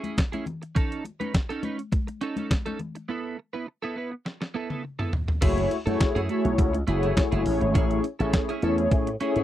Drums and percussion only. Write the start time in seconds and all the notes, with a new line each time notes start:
0.04 closed hi-hat, high conga
0.18 kick, snare, closed hi-hat, muted conga
0.33 closed hi-hat, high conga
0.46 closed hi-hat, muted conga, low conga
0.63 closed hi-hat
0.76 kick, closed hi-hat, low conga
0.92 closed hi-hat
1.05 closed hi-hat, muted conga
1.20 closed hi-hat, high conga
1.34 kick, snare, closed hi-hat, muted conga
1.50 closed hi-hat
1.63 closed hi-hat, high conga
1.79 closed hi-hat
1.92 kick, closed hi-hat, muted conga, high conga
2.08 closed hi-hat
2.21 closed hi-hat
2.36 closed hi-hat, high conga
2.51 kick, snare, closed hi-hat
2.66 closed hi-hat, high conga
2.79 closed hi-hat, low conga
2.96 closed hi-hat
4.26 snare
4.42 snare
4.70 high tom
4.99 mid tom
5.13 floor tom
5.28 floor tom
5.42 kick, closed hi-hat, crash
5.58 closed hi-hat
5.71 closed hi-hat
5.87 closed hi-hat
6.00 kick, snare, closed hi-hat
6.16 closed hi-hat
6.29 closed hi-hat
6.45 closed hi-hat
6.58 kick, closed hi-hat
6.75 closed hi-hat
6.88 closed hi-hat
7.03 closed hi-hat
7.17 kick, snare, closed hi-hat
7.32 closed hi-hat
7.46 open hi-hat
7.61 closed hi-hat
7.75 kick, closed hi-hat
7.91 closed hi-hat
8.04 closed hi-hat
8.20 closed hi-hat
8.33 kick, snare, closed hi-hat
8.49 closed hi-hat
8.62 closed hi-hat
8.78 closed hi-hat
8.91 kick, closed hi-hat
9.07 closed hi-hat
9.20 closed hi-hat
9.36 closed hi-hat